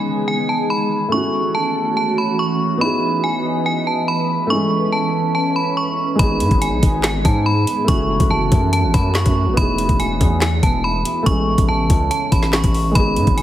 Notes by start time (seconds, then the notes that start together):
Already playing: D#3 G#3 B3 D#4 G#4 G#5
0.28 G#5
0.49 A5
0.70 B5
1.08 E3 A3 C#4 F#4 C#6
1.14 E4 F#4
1.55 A5
1.97 A5
2.18 B5
2.39 C#6
2.78 B3 D#4 B4 D#5 B5
2.83 E4 G#4
3.24 G#5
3.66 G#5
3.87 A5
4.08 B5
4.47 A3 C#4 C#6
4.52 G#3 E4
4.92 A5
5.35 A5
5.56 B5
5.77 C#6
6.15 G#3 B3
6.19 G#1 D#3 G#3 B3 D#4 G#4 B5, kick, closed hi-hat
6.40 G#2, closed hi-hat
6.51 G#1, kick, closed hi-hat
6.62 G#5, closed hi-hat
6.72 B1
6.83 G#1, kick, closed hi-hat
7.03 G#5, snare, clap, closed hi-hat
7.25 G#2 A5, kick, closed hi-hat
7.46 B5
7.67 closed hi-hat
7.84 F#1 E3 A3 C#4 F#4 C#6, kick, closed hi-hat
7.90 E4 F#4
8.20 F#1, kick, closed hi-hat
8.31 F#1 A5
8.52 F#2, kick, closed hi-hat
8.73 A5, closed hi-hat
8.83 A1
8.94 F#2 B5, kick, closed hi-hat
9.15 C#6, snare, clap
9.26 F#2, kick, closed hi-hat
9.47 G#1
9.53 E1 E3 B3 D#4 B5, kick, closed hi-hat
9.59 E4 G#4
9.78 closed hi-hat
9.89 E1, kick, closed hi-hat
10.00 G#5, closed hi-hat
10.21 E2, kick, closed hi-hat
10.41 G#5, snare, clap, closed hi-hat
10.63 E1 A5, kick, closed hi-hat
10.84 B5
11.05 closed hi-hat
11.23 A1 C#3 A3 C#4 C#6, kick, closed hi-hat
11.28 G#3 E4
11.58 A1, kick, closed hi-hat
11.69 A1 A5
11.90 C#2, kick, closed hi-hat
12.11 A5, closed hi-hat
12.32 A1 B5, kick, closed hi-hat
12.43 snare
12.53 C#6, snare, clap
12.64 A1, kick, closed hi-hat
12.74 open hi-hat
12.91 G#3 B3 B5, closed hi-hat
12.95 G#1 B2 D#3 D#4 G#4, kick
13.16 G#2, closed hi-hat
13.27 G#1, kick, closed hi-hat
13.38 G#5, closed hi-hat